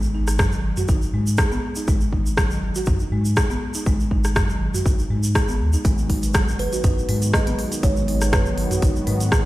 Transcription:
Already playing: G#1
0.02 shaker
0.14 D#4
0.27 cross-stick, shaker
0.39 F#3, kick, cross-stick, mid tom, shaker
0.52 G#1 D#3, shaker
0.64 G#1
0.77 F#4, mid tom, shaker
0.88 G#1 D#4, kick, shaker
1.02 shaker
1.13 G#2 G#3
1.27 shaker
1.37 G#4, kick, cross-stick, shaker
1.51 G#1 B3, shaker
1.75 D#4, shaker
1.88 G#1 G#3, kick, shaker
2.01 shaker
2.13 D#4, kick
2.26 shaker
2.37 F#3, kick, cross-stick, shaker
2.51 G#1 D#3, shaker
2.62 G#1
2.75 F#4, shaker
2.86 G#1 D#4, kick, mid tom, shaker
2.99 shaker
3.12 G#2 G#3
3.25 shaker
3.36 G#4, kick, cross-stick, shaker
3.50 G#1 B3, shaker
3.74 D#4, shaker
3.86 G#1 G#3, kick, shaker
4.00 shaker
4.11 D#4, kick
4.24 cross-stick, shaker
4.36 F#3, kick, cross-stick, mid tom, shaker
4.49 G#1 D#3, shaker
4.60 G#1
4.74 F#4, mid tom, shaker
4.86 G#1 D#4, kick, shaker
4.99 shaker
5.10 G#2 G#3
5.23 shaker
5.35 G#4, kick, cross-stick, shaker
5.48 G#1 B3, shaker
5.60 D#2
5.73 D#4, shaker
5.85 G#1 D#3 F#3 G#3 B3 F#4, kick, closed hi-hat, shaker
5.98 shaker
6.10 D#4, kick, open hi-hat
6.23 closed hi-hat, shaker
6.34 F#3, kick, cross-stick, closed hi-hat, shaker
6.48 G#1 D#3, shaker
6.59 G#1 B4, open hi-hat
6.73 F#4, closed hi-hat, shaker
6.84 G#1 D#4, kick, closed hi-hat, mid tom, shaker
6.99 shaker
7.09 G#2 G#3, open hi-hat
7.22 closed hi-hat, shaker
7.34 G#4 D#5, kick, cross-stick, shaker
7.47 G#1 B3, closed hi-hat, shaker
7.59 open hi-hat
7.72 D#4, closed hi-hat, shaker
7.83 G#1 G#3 C#5, kick, closed hi-hat, shaker
7.96 shaker
8.08 D#4, open hi-hat
8.21 cross-stick, closed hi-hat, shaker
8.33 F#3 B4, kick, cross-stick, closed hi-hat, mid tom, shaker
8.46 G#1 D#3, shaker
8.57 G#1, open hi-hat
8.71 F#4, closed hi-hat, mid tom, shaker
8.82 G#1 D#4, kick, closed hi-hat, shaker
8.96 shaker
9.07 G#2 G#3, open hi-hat
9.20 closed hi-hat, shaker
9.32 G#4, kick, cross-stick, shaker

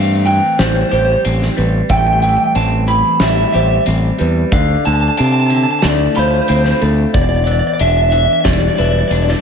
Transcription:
Already playing: G2 A2 E3 C4 F5
0.26 E3 G5, closed hi-hat
0.59 A1 G3 C5, snare, closed hi-hat
0.66 C5
0.74 C5
0.81 C5
0.89 A1 G4 C5, closed hi-hat
0.97 C5
1.05 C5
1.13 C5
1.25 A1 C4, closed hi-hat
1.42 snare
1.57 A1 G3 B4, closed hi-hat
1.89 A1 A2 E5 G5, kick, closed hi-hat
1.97 G5
2.07 G5
2.13 G5
2.20 E3 G5, closed hi-hat
2.29 G5
2.37 G5
2.44 G5
2.55 A1 C4 A5, closed hi-hat
2.88 E3 B5, closed hi-hat
3.20 A1 G3 E5, snare, closed hi-hat
3.30 E5
3.36 E5
3.45 E5
3.52 A1 G4 C5 E5, closed hi-hat
3.60 E5
3.68 E5
3.76 E5
3.86 A1 C4, closed hi-hat
4.19 E2 G3 B4, closed hi-hat
4.52 D2 D3 D5 F5, kick, closed hi-hat
4.85 D2 D3 A5, closed hi-hat
4.93 A5
5.00 A5
5.08 A5
5.17 C3 C4 A5, closed hi-hat
5.24 A5
5.32 A5
5.40 A5
5.46 D3 A5, closed hi-hat
5.55 A5
5.63 A5
5.71 A5
5.79 A5, snare, closed hi-hat
5.83 D2 A3
5.87 D5
6.15 D2 F4 C5 B5, closed hi-hat
6.27 C5
6.34 C5
6.41 C5
6.48 D2 C4 C5, closed hi-hat
6.56 C5
6.64 C5, snare
6.72 C5
6.81 D2 A3 A4, closed hi-hat
7.14 E1 E2 D5, kick, closed hi-hat
7.21 D5
7.29 D5
7.36 D5
7.44 E3 D5, closed hi-hat
7.52 D5
7.59 D5
7.67 D5
7.73 D5
7.79 E1 D4 E5, closed hi-hat
7.88 E5
7.97 E5
8.02 E5
8.10 E3 E5, closed hi-hat
8.18 E5
8.25 E5
8.33 E5
8.40 D5 E5
8.45 E1 G3, kick, snare, closed hi-hat
8.51 D5
8.59 D5
8.68 D5
8.76 E1 E4 B4 D5, closed hi-hat
8.84 D5
8.91 D5
8.99 D5
9.08 E1 D5, closed hi-hat
9.12 D4 D5
9.22 D5
9.28 D5, snare

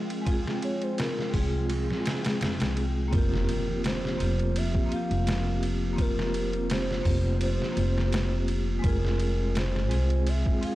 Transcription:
Already playing: F3 G#3 C4 F4 G#4 G5
0.10 ride
0.22 G#3 C4
0.27 F4, kick, ride
0.32 G#4
0.48 snare
0.62 C#5, ride
0.82 C5, ride
0.98 A#4, snare, ride
1.19 snare
1.32 C2 G#3 C4 F4 G#4, kick, open hi-hat
1.37 G#4
1.70 ride
1.91 snare
2.01 G#3 C4
2.06 F4, snare, ride
2.11 G#4
2.25 snare, ride
2.41 F1, snare, ride
2.60 C2, snare, ride
2.77 ride
3.08 A#3 C4
3.12 F1 F3 C4 F4 G4 A#4, kick, ride, impact
3.18 G4
3.34 snare
3.49 ride
3.84 C5, snare, ride
4.05 snare
4.17 F1 A#3 C4 F4, ride
4.22 G4
4.39 ride
4.56 E5, ride
4.75 kick
4.86 A#3 C4
4.92 F4 F5, ride
4.96 G4
5.11 F1, ride
5.27 snare, ride
5.63 ride
5.93 A#3 C4
5.98 F4 A#4 C5, kick, ride
6.02 G4
6.19 snare
6.34 ride
6.53 ride
6.70 C5, snare, ride
6.91 snare
7.03 F1 A#3 C4 F4, kick, open hi-hat
7.08 G4
7.41 C5, ride
7.62 snare
7.72 A#3 C4
7.77 F1 F4, ride
7.82 G4
7.98 snare
8.12 snare, ride
8.48 ride
8.79 G#3 C4
8.84 F1 G#3 F4 A#4, kick, ride
8.89 G#4
9.05 snare
9.20 ride
9.55 C5, snare, ride
9.76 snare
9.89 C2 G#3 C4 F4, ride
9.94 G#4
10.10 ride
10.27 E5, ride
10.46 kick
10.58 G#3 C4
10.63 F4 F5, ride
10.68 G#4

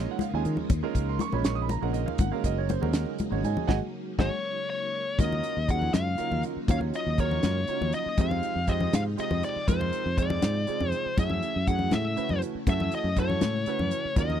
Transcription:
Already playing: C#3 F3 G#3 A#3 C#4 D#4 F4 C#5
0.11 F#5
0.19 F5, muted fingered electric bass stroke, closed hi-hat, high conga, low conga
0.32 D#2 G#3 C#4 D#4 F4 G#4 G#5, low conga
0.45 D#3, closed hi-hat
0.57 low conga
0.70 D#2, kick, closed hi-hat, high conga, low conga
0.83 G#3 C#4 D#4 F4 A#4
0.95 C#2, kick, closed hi-hat
1.09 C6
1.19 C#6, closed hi-hat, high conga
1.32 A#1 G#3 C#4 D#4 F4 C#5 B5, low conga
1.44 C#6, snare, closed hi-hat
1.55 D#6
1.62 B5
1.69 A#5, closed hi-hat, high conga, low conga
1.81 A#1 G#3 C#4 D#4 F4 A#4 F#5, low conga
1.93 D#5, closed hi-hat
2.06 F5, low conga
2.18 G#1 F#3 D#4 F#5, kick, closed hi-hat, high conga, low conga
2.32 G#3 C#4 D#4 F#4 A#4 F5
2.44 F#1 D#5, kick, closed hi-hat
2.58 C#5
2.69 C5, closed hi-hat, high conga
2.81 D#2 G#3 C#4 D#4 F#4 A#4, low conga
2.93 snare, closed hi-hat
3.19 muted fingered electric bass stroke, closed hi-hat, high conga, low conga
3.31 G#1 G#3 C#4 D#4 F#4 C#5, low conga
3.44 G#2 G#4 C#5 D#5 G#5, closed hi-hat
3.57 low conga
3.67 G#1 D#4 F#4 G#4 D#5 F#5 G#5, kick, snare, high conga
4.19 G#1 D#4 F#4 G#4 C#5 D#5 F#5 G#5, kick, snare, high conga
4.70 C#5
5.18 D#2 C#3 F#3 A#3 C#4 D#4 F4 A#4 D#5, kick, closed hi-hat, high conga
5.32 low conga
5.43 closed hi-hat
5.57 D#2
5.67 F#3 C#4 D#4 F4 G#4 F#5, kick, closed hi-hat
5.82 low conga
5.93 F#2 F5, snare, closed hi-hat, high conga
6.18 F#3 C#4 D#4 F4 A#4, muted fingered electric bass stroke, closed hi-hat
6.31 D#2, low conga
6.43 closed hi-hat
6.57 muted fingered electric bass stroke
6.68 D#2 F#3 C#4 D#4 F4 C#5 F5, kick, closed hi-hat, high conga
6.81 low conga
6.94 D#5, closed hi-hat
7.06 D#2
7.18 F#3 C#4 D#4 F4 A#4 C#5, kick, closed hi-hat
7.31 low conga
7.43 F#2, snare, closed hi-hat, high conga
7.68 F#3 C#4 D#4 F4 C#5, muted fingered electric bass stroke, closed hi-hat
7.81 D#2, low conga
7.92 D#5, closed hi-hat
8.06 muted fingered electric bass stroke
8.17 F2 C3 F3 G#3 C4 D#4 F4 G4 F5 G5, kick, closed hi-hat, high conga
8.31 low conga
8.43 closed hi-hat
8.56 F2
8.67 G#3 C4 D#4 F4 G4 D#5, kick, closed hi-hat
8.81 low conga
8.93 G#2 F5, snare, closed hi-hat, high conga
9.17 G#3 C4 D#4 F4 G4 D#5, muted fingered electric bass stroke, closed hi-hat
9.31 F2, low conga
9.43 D5, closed hi-hat
9.56 muted fingered electric bass stroke
9.68 F2 G#3 C4 D#4 F4 A#4 C5, kick, closed hi-hat, high conga
9.81 low conga
9.93 closed hi-hat
10.06 F2
10.18 G#3 C4 D#4 F4 G#4 D5, kick, closed hi-hat
10.30 low conga
10.42 G#2, snare, closed hi-hat, high conga
10.67 G#3 C4 D#4 F4 G#4, muted fingered electric bass stroke, closed hi-hat
10.80 F2, low conga
10.90 C5, closed hi-hat, low conga
11.06 muted fingered electric bass stroke
11.17 F#2 C#3 A3 C#4 E4 F#4 G#4 E5, kick, closed hi-hat, high conga
11.30 low conga
11.43 closed hi-hat
11.56 F#2
11.67 A3 C#4 E4 F#4 G#4 F#5, kick, closed hi-hat
11.79 low conga
11.91 A2 E5, snare, closed hi-hat, high conga
12.16 A3 C#4 E4 F#4 B4, muted fingered electric bass stroke, closed hi-hat
12.29 F#2, low conga
12.42 closed hi-hat
12.55 muted fingered electric bass stroke
12.67 F#2 A3 C#4 E4 F#4 A4 E5, kick, closed hi-hat, high conga
12.80 low conga
12.92 D#5, closed hi-hat
13.04 F#2
13.16 A3 C#4 E4 F#4 A4 C#5, kick, closed hi-hat
13.30 low conga
13.41 A2, snare, closed hi-hat, high conga
13.66 A3 C#4 E4 F#4 B4, muted fingered electric bass stroke, closed hi-hat
13.79 F#2, low conga
13.91 closed hi-hat
14.05 muted fingered electric bass stroke
14.16 D#2 D#3 F#3 A#3 C#4 D#4 F4 A#4 D#5, kick, closed hi-hat, high conga
14.30 low conga

